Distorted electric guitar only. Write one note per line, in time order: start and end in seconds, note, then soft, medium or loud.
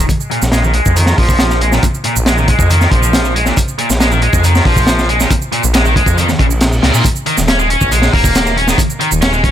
0.31 0.40 A#2 medium
0.52 0.62 G#3 medium
0.63 0.73 D#3 loud
0.74 0.95 G#3 medium
0.96 1.17 D#3 loud
1.17 1.60 F3 medium
1.61 1.71 G#3 medium
1.72 1.83 A#2 medium
2.05 2.14 A#2 medium
2.27 2.36 G#3 medium
2.38 2.47 D#3 loud
2.48 2.69 G#3 medium
2.70 2.91 D#3 loud
2.92 3.34 F3 medium
3.35 3.45 G#3 medium
3.46 3.57 A#2 medium
3.79 3.88 A#2 medium
4.01 4.11 G#3 medium
4.12 4.21 D#3 loud
4.22 4.43 G#3 medium
4.44 4.65 D#3 loud
4.66 5.08 F3 medium
5.09 5.19 G#3 medium
5.20 5.30 A#2 medium
5.53 5.62 A#2 medium
5.74 5.84 G#3 medium
5.85 5.94 D#3 loud
5.96 6.17 G#3 medium
6.17 6.28 D#3 loud
6.39 6.45 C#3 medium
6.83 6.93 A#2 medium
6.94 7.04 A#2 loud
7.27 7.36 D#3 medium
7.48 7.58 C#4 medium
7.59 7.68 G#3 loud
7.70 7.91 C#4 medium
7.92 8.12 G#3 loud
8.14 8.56 A#3 medium
8.57 8.67 C#4 medium
8.68 8.78 D#3 medium
9.00 9.10 D#3 medium
9.22 9.32 C#4 medium
9.33 9.42 G#3 loud
9.44 9.51 C#4 medium